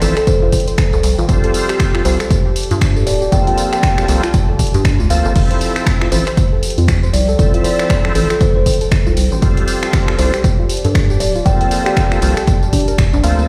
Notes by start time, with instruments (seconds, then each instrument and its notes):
Already playing: ambient pad F3 C5 G5
0.01 analog synth bass A1, tonewheel organ F3 C4 E4 A4, kalimba A4, open hi-hat, tambourine
0.17 synth arpeggio sound A4, kalimba A4, finger snap, closed hi-hat, tambourine
0.27 kalimba C5, kick, closed hi-hat, tambourine
0.42 analog synth bass F1, synth arpeggio sound F4, kalimba C5
0.52 kick, open hi-hat, tambourine
0.60 closed hi-hat
0.68 synth arpeggio sound C5, closed hi-hat, tambourine
0.78 finger snap, kick, closed hi-hat, tambourine
0.93 analog synth bass C2, synth arpeggio sound A4, tambourine
1.03 analog synth bass C2, open hi-hat, tambourine
1.18 analog synth bass A1, synth arpeggio sound F4, tambourine
1.28 analog synth bass G1, tonewheel organ G3 C4 F4 A4, ambient pad G4, kick, closed hi-hat, tambourine
1.44 synth arpeggio sound A4, closed hi-hat
1.54 open hi-hat, tambourine
1.68 synth arpeggio sound G4, ambient pad D5, finger snap, closed hi-hat, tambourine
1.80 ambient pad A5, finger snap, kick, closed hi-hat, tambourine
1.95 synth arpeggio sound F4, finger snap
2.05 analog synth bass C2, tonewheel organ G3 C4 F4 A4, kalimba C5, open hi-hat, tambourine
2.20 synth arpeggio sound A4, finger snap, closed hi-hat, tambourine
2.30 kick, closed hi-hat, tambourine
2.45 synth arpeggio sound G4
2.56 open hi-hat, tambourine
2.63 closed hi-hat
2.71 analog synth bass G2, synth arpeggio sound F4, closed hi-hat, tambourine
2.81 finger snap, kick, closed hi-hat, tambourine
2.96 synth arpeggio sound A4, tambourine
3.07 analog synth bass D1, kalimba D5, open hi-hat, tambourine
3.22 synth arpeggio sound G4, tambourine
3.31 analog synth bass G1, tonewheel organ F3 A#3 C4 A4, kalimba G5, kick, closed hi-hat, tambourine
3.47 synth arpeggio sound F4, kalimba G5, closed hi-hat
3.58 open hi-hat, tambourine
3.73 synth arpeggio sound A4, kalimba G5, finger snap, closed hi-hat, tambourine
3.83 finger snap, kick, closed hi-hat, tambourine
3.98 synth arpeggio sound G4, finger snap, tambourine
4.08 analog synth bass C2, tonewheel organ F3 A#3 C4 A4, open hi-hat, tambourine
4.23 synth arpeggio sound F4, finger snap, closed hi-hat, tambourine
4.34 kick, closed hi-hat, tambourine
4.49 analog synth bass G1, synth arpeggio sound A4
4.59 kick, open hi-hat, tambourine
4.67 closed hi-hat
4.74 analog synth bass G2, synth arpeggio sound G4, closed hi-hat, tambourine
4.85 finger snap, kick, closed hi-hat, tambourine
5.00 analog synth bass D2, synth arpeggio sound F4, tambourine
5.10 analog synth bass D2, tonewheel organ F3 A#3 C4 A4, kalimba F5, open hi-hat, tambourine
5.25 analog synth bass G1, synth arpeggio sound A4, tambourine
5.35 analog synth bass F1, tonewheel organ F3 C4 E4 A4, ambient pad F3, kick, closed hi-hat, crash, tambourine
5.49 ambient pad C5, synth arpeggio sound C5, closed hi-hat
5.61 open hi-hat, tambourine
5.76 synth arpeggio sound A4, finger snap, closed hi-hat, tambourine
5.86 finger snap, kick, closed hi-hat, tambourine
5.96 ambient pad G5
6.01 synth arpeggio sound F4, finger snap
6.11 analog synth bass A1, tonewheel organ F3 C4 E4 A4, kalimba C5, open hi-hat, tambourine
6.27 synth arpeggio sound C5, finger snap, closed hi-hat, tambourine
6.37 kick, closed hi-hat, tambourine
6.52 synth arpeggio sound A4
6.63 open hi-hat, tambourine
6.70 closed hi-hat
6.78 analog synth bass F2, synth arpeggio sound F4, closed hi-hat, tambourine
6.88 finger snap, kick, closed hi-hat, tambourine
7.03 synth arpeggio sound C5, tambourine
7.13 analog synth bass C2, kalimba D5, open hi-hat, tambourine
7.29 synth arpeggio sound A4, tambourine
7.38 analog synth bass F1, tonewheel organ F3 C4 E4 A4, kick, closed hi-hat, tambourine
7.54 synth arpeggio sound F4, closed hi-hat
7.64 kalimba D5, open hi-hat, tambourine
7.79 synth arpeggio sound C5, finger snap, closed hi-hat, tambourine
7.90 finger snap, kick, closed hi-hat, tambourine
8.05 synth arpeggio sound A4, finger snap
8.15 analog synth bass A1, tonewheel organ F3 C4 E4 A4, kalimba A4, open hi-hat, tambourine
8.30 synth arpeggio sound F4, kalimba A4, finger snap, closed hi-hat, tambourine
8.41 kalimba C5, kick, closed hi-hat, tambourine
8.56 analog synth bass F1, synth arpeggio sound C5, kalimba C5
8.66 kick, open hi-hat, tambourine
8.74 closed hi-hat
8.81 synth arpeggio sound A4, closed hi-hat, tambourine
8.91 finger snap, kick, closed hi-hat, tambourine
9.06 analog synth bass C2, synth arpeggio sound F4, tambourine
9.17 analog synth bass C2, open hi-hat, tambourine
9.32 analog synth bass A1, synth arpeggio sound C5, tambourine
9.41 analog synth bass G1, tonewheel organ G3 C4 F4 A4, ambient pad G4, kick, closed hi-hat, tambourine
9.57 synth arpeggio sound G4, closed hi-hat
9.68 open hi-hat, tambourine
9.83 synth arpeggio sound F4, ambient pad D5, finger snap, closed hi-hat, tambourine
9.93 finger snap, kick, closed hi-hat, tambourine
10.08 synth arpeggio sound A4, finger snap
10.18 analog synth bass C2, tonewheel organ G3 C4 F4 A4, kalimba C5, open hi-hat, tambourine
10.34 synth arpeggio sound G4, ambient pad A5, finger snap, closed hi-hat, tambourine
10.44 kick, closed hi-hat, tambourine
10.59 synth arpeggio sound F4
10.69 open hi-hat, tambourine
10.77 closed hi-hat
10.84 analog synth bass G2, synth arpeggio sound A4, closed hi-hat, tambourine
10.95 finger snap, kick, closed hi-hat, tambourine
11.10 synth arpeggio sound G4, tambourine
11.20 analog synth bass D1, kalimba D5, open hi-hat, tambourine
11.35 synth arpeggio sound F4, tambourine
11.45 analog synth bass G1, tonewheel organ F3 A#3 C4 A4, kalimba G5, kick, closed hi-hat, tambourine
11.61 synth arpeggio sound A4, kalimba G5, closed hi-hat
11.71 open hi-hat, tambourine
11.86 synth arpeggio sound G4, kalimba G5, finger snap, closed hi-hat, tambourine
11.97 finger snap, kick, closed hi-hat, tambourine
12.12 synth arpeggio sound F4, finger snap, tambourine
12.21 analog synth bass C2, tonewheel organ F3 A#3 C4 A4, open hi-hat, tambourine
12.37 synth arpeggio sound A4, finger snap, closed hi-hat, tambourine
12.47 kick, closed hi-hat, tambourine
12.62 analog synth bass G1, synth arpeggio sound G4, tambourine
12.73 synth arpeggio sound D4, kick, open hi-hat, tambourine
12.80 closed hi-hat
12.88 synth arpeggio sound A#4, closed hi-hat, tambourine
12.98 analog synth bass D1, finger snap, kick, closed hi-hat, tambourine
13.13 analog synth bass A#1, synth arpeggio sound D4, tambourine
13.23 analog synth bass D2, tonewheel organ F3 A#3 C4 A4, kalimba F5, open hi-hat, tambourine
13.39 synth arpeggio sound A4, tambourine